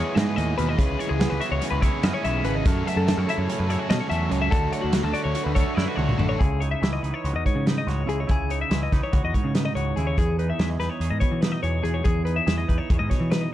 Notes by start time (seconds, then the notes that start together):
Already playing: E2 E3 G#3 B3 E4 G#4 C#5
0.15 G#2 G#3 B3 E4 G#4 D#5, snare, closed hi-hat
0.26 B4
0.36 D#2 A2 B3 E4 G#4 D#5, closed hi-hat
0.58 D#2 B2 E3 G#3 B3 E4 G#4 B4, closed hi-hat
0.69 D#5
0.78 C#2 C#3 G#3 C#4 E4 G#4 B4, kick, closed hi-hat
0.98 E3 C#4 E4 G#4 C#5, closed hi-hat
1.09 C#2 G#4
1.20 G#3 B3 C#4 E4 G#4, snare, closed hi-hat
1.29 C#2 B4
1.40 C#3 G#3 C#4 E4 F#4 G#4 E5, closed hi-hat
1.52 C#2 C#5
1.60 G#3 C#4 E4 G#4, snare, closed hi-hat
1.71 C#2 B4
1.81 C#3 G#3 C#4 E4 G#4 C#5, kick, closed hi-hat
2.03 F#2 G#3 B3 C#4 E4 G#4 D#5, snare, closed hi-hat
2.13 C#4 C#5
2.22 B1 E3 E4 G#4 E5, closed hi-hat
2.26 C#4
2.43 G#1 C#3 G#3 C#4 E4 G#4 B4, closed hi-hat
2.55 D#5
2.64 F#2 C#3 F#3 A3 C#4 A4 C#5, kick, closed hi-hat
2.84 F#3 A3 C#4 A4 E5, closed hi-hat
2.89 F#3
2.96 F#2 A4
3.06 F#3 A3 C#4 A4, snare, closed hi-hat
3.17 F#2 C#5
3.27 F#2 C#3 F#3 A3 C#4 E4 A4 E5, closed hi-hat
3.38 F#2 C#5
3.47 F#3 A3 C#4 A4, snare, closed hi-hat
3.59 F#2 B4
3.68 F#2 C#3 F#3 A3 C#4 E4 A4 C#5, closed hi-hat
3.79 F#4
3.88 B2 F#3 A3 C#4 A4 D#5, snare, closed hi-hat
4.00 C#5
4.08 E2 F#3 A3 C#4 A4 E5, closed hi-hat
4.29 C#2 F#2 C#3 F#3 A3 C#4 A4 C#5, closed hi-hat
4.42 E5
4.50 D2 D3 F#3 A3 D4 F#4 A4, kick, closed hi-hat
4.70 A3 D4 F#4 C#5, closed hi-hat
4.75 A3
4.82 D2 F#4
4.92 F#3 A3 D4 F#4, snare, closed hi-hat
5.03 D2 A4
5.13 D3 F#3 A3 D4 F#4 D5, closed hi-hat
5.24 D2 C#5
5.34 F#3 A3 D4 F#4, closed hi-hat
5.44 D2 B4
5.55 D3 F#3 A3 D4 F#4 A4 C#5, kick, closed hi-hat
5.75 F#2 F#3 A3 D4 E4 D5, snare
5.79 F#4
5.86 F#4 B4
5.96 C#2 A3 D4 F#4 C#5, high tom
6.09 mid tom
6.18 A1 D3 F#3 A3 D4 F#4 A4, mid tom
6.29 C#5
6.39 C#2 C#3 E4 G#4, kick, closed hi-hat
6.60 D#4 C#5, closed hi-hat
6.71 E5
6.81 C#2 E3 E4, snare, closed hi-hat
6.93 D#5
7.03 C#2 D#4 B4, closed hi-hat
7.14 C#5
7.24 C#2 F#4, closed hi-hat
7.34 E2 D#5
7.45 G#2 C#5, kick, closed hi-hat
7.55 C#3
7.66 D#4 B4, snare, closed hi-hat
7.78 D#5
7.87 C#2 F#4 C#5, snare, closed hi-hat
8.06 C#2 C#3 E4 G#4, closed hi-hat
8.20 C#5
8.27 C#2 C#3 E4, kick, closed hi-hat
8.31 G#4
8.49 D#4 C#5, closed hi-hat
8.61 E5
8.69 C#2 E3 E4, snare, closed hi-hat
8.83 D#5
8.92 C#2 D#4 B4, kick, snare, closed hi-hat
9.03 C#5
9.13 C#2 F#4, kick, closed hi-hat
9.24 E2 D#5
9.34 G#2 C#5, kick, closed hi-hat
9.44 C#3
9.54 D#4 B4, snare, closed hi-hat
9.65 D#5
9.75 C#2 F#4 C#5, closed hi-hat
9.96 D#2 C#3 E4 G#4, closed hi-hat
10.07 C#5
10.18 E2 G#4, kick, closed hi-hat
10.39 D#4 B4, closed hi-hat
10.50 E5
10.58 E2 E3 G#4, snare, closed hi-hat
10.70 D#5
10.79 E2 D#4 B4, snare, closed hi-hat
10.90 C#5
11.00 E2 G#4, closed hi-hat
11.11 G#2 D#5
11.20 B2 C#5, kick, closed hi-hat
11.31 E3
11.41 D#4 B4, snare, closed hi-hat
11.52 D#5
11.63 E2 G#4 C#5, closed hi-hat
11.82 E2 G#4, closed hi-hat
11.94 C#5
12.04 E2 G#4, kick, closed hi-hat
12.25 D#4 B4, closed hi-hat
12.36 E5
12.46 E2 E3 G#4, snare, closed hi-hat
12.58 D#5
12.68 E2 D#4 B4, kick, closed hi-hat
12.78 C#5
12.90 E2 G#4, kick, closed hi-hat
12.99 G#2 D#5
13.10 B2 C#5, kick, snare, closed hi-hat
13.20 E3
13.32 D#4 B4, snare, closed hi-hat
13.41 D#5